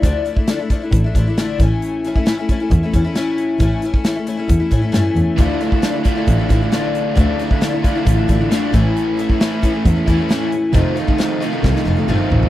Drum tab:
HH |x-x-x-x-x-x-x-x-|x-x-x-x-x-x-x-x-|x-x-x-x-x-x-x-x-|x-x-x-x-x-x-x-x-|
SD |----o-------o---|----o-------o---|----o-------o---|----o-------o---|
T1 |----------------|----------------|----------------|----------------|
T2 |----------------|----------------|----------------|----------------|
FT |----------------|----------------|----------------|----------------|
BD |o--o--o-o-o---o-|---o--o-o-o-----|o--o----o-o-----|o--o--o-o-o-----|

HH |x-x-x-x-x-x-x-x-|x-x-x-x-x-x-x-x-|x-x-x-x---------|
SD |----o-------o---|----o-------o---|----o---oo------|
T1 |----------------|----------------|-----------o----|
T2 |----------------|----------------|------------o---|
FT |----------------|----------------|--------------oo|
BD |o--o--o-o-o---o-|---o--o-o-o-----|o--o----o-------|